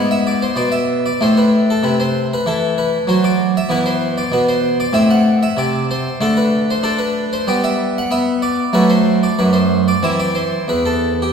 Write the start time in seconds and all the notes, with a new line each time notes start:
Already playing: G#2 B3
0.11 E5
0.27 D5
0.42 C5
0.56 B2 D5
0.72 E5
1.06 D5
1.21 A2 A3 C5
1.37 B4
1.70 A4
1.83 C3 B4
2.00 C5
2.34 B4
2.46 E3 A4
2.78 B4
3.07 F#3 C5
3.24 D5
3.57 E5
3.69 E3 B3 B4
3.86 C5
4.18 D5
4.32 B2 B4
4.49 C5
4.80 D5
4.93 A2 C4 E5
5.11 F#5
5.43 E5
5.57 C3 D5
5.91 C5
6.21 D3 A3 A4
6.37 B4
6.70 C5
6.83 D4 A4
6.99 B4
7.33 C5
7.47 G3 B3 D5
7.64 E5
7.98 F#5
8.11 B3 E5
8.42 D5
8.73 F#3 A3 B4
8.90 C5
9.23 D5
9.39 F#2 B4
9.53 C5
9.88 D5
10.03 E3 C4 E5
10.20 D5
10.35 C5
10.68 E2 B4
10.85 A4
11.22 G4